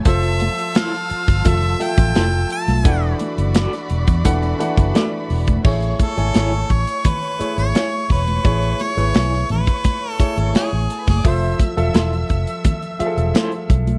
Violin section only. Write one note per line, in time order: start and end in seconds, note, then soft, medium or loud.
0.05 2.81 F4 medium
0.05 2.81 A5 medium
0.05 2.81 E6 medium
2.85 5.61 F#4 medium
2.85 5.61 D5 medium
2.85 5.61 B5 medium
5.64 10.78 C#5 medium
5.64 10.78 C#6 medium
10.89 10.98 A4 medium
10.89 10.98 A5 medium
10.99 11.07 B4 medium
10.99 11.07 B5 medium
11.08 11.16 C#5 medium
11.08 11.16 C#6 medium
11.17 11.25 D5 medium
11.17 11.25 D6 medium
11.26 13.66 E5 medium
11.26 13.66 E6 loud